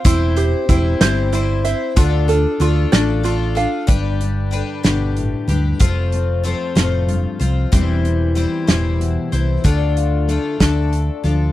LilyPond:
<<
  \new Staff \with { instrumentName = "Ukulele" } { \time 6/8 \key g \mixolydian \tempo 4. = 62 e'8 g'8 e'8 c''8 e'8 e''8 | f'8 a'8 f'8 d''8 f'8 f''8 | r2. | r2. |
r2. | r2. | }
  \new Staff \with { instrumentName = "Twelve-string acoustic guitar" } { \time 6/8 \key g \mixolydian <e g c' e' c''>8 <c' e' c''>8 <g c' e' c''>8 <e g c' e' c''>8 <g c' e' c''>8 <c' e' c''>8 | <d a d' f' a'>8 <d' f' a'>8 <a d' f' a'>8 <d a d' f' a'>8 <a d' f' a'>8 <d' f' a'>8 | <g d' g' b'>4 <g d' g' b'>8 <g d' g' b'>4 <d' g' b'>8 | <f a c' f' c''>4 <a c' f' c''>8 <f a c' f' c''>4 <c' f' c''>8 |
<e g c' e' c''>4 <g c' e' c''>8 <e g e' c''>4 <c' e' c''>8 | <d a d' f' a'>4 <a d' f' a'>8 <d a d' a'>4 <d' f' a'>8 | }
  \new Staff \with { instrumentName = "Steel-string acoustic guitar" } { \clef bass \time 6/8 \key g \mixolydian << { r2. | r2. | r8 d'2~ d'8 | r8 c'2~ c'8 |
<e g c' e'>2. | r8 f'2~ f'8 | } \\ { r2. | r2. | g,4 d8 b,8 a,8 g,8 | f,4 f8 a,8 g,8 f,8 |
e,4 e8 a,8 b,8 c8 | d4 a8 d8 r8 f8 | } >> }
  \new Staff \with { instrumentName = "Fingered electric bass" } { \clef bass \time 6/8 \key g \mixolydian e,,4 e,,8 g,,4. | d,4 d,8 a,,4. | g,,4. g,,4 d,8 | f,,4. f,,4 c,8 |
e,,4. e,,4 c,8 | d,4. d,4 d,8 | }
  \new DrumStaff \with { instrumentName = "Drums" } \drummode { \time 6/8 <hh bd>8 hh8 <hh bd>8 <hh sn>8 hh8 hh8 | <hh bd>8 hh8 hh8 <hh sn>8 hh8 hh8 | <hh bd>8 hh8 hh8 <hh sn>8 hh8 hh8 | <hh bd>8 hh8 hh8 <hh sn>8 hh8 hh8 |
<hh bd>8 hh8 hh8 <hh sn>8 hh8 hh8 | <hh bd>8 hh8 hh8 <hh bd sn>8 hh8 hh8 | }
>>